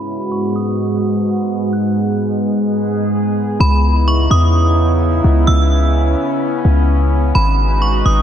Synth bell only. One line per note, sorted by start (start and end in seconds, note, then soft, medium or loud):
0.00 0.29 B5 medium
0.32 0.54 C#6 medium
0.56 1.22 D#6 medium
1.73 2.17 F#6 loud
3.61 4.04 B5 loud
4.08 4.30 C#6 medium
4.31 4.97 D#6 medium
5.47 5.92 E6 loud
7.35 7.79 B5 medium
7.82 8.04 C#6 medium
8.06 8.22 D#6 medium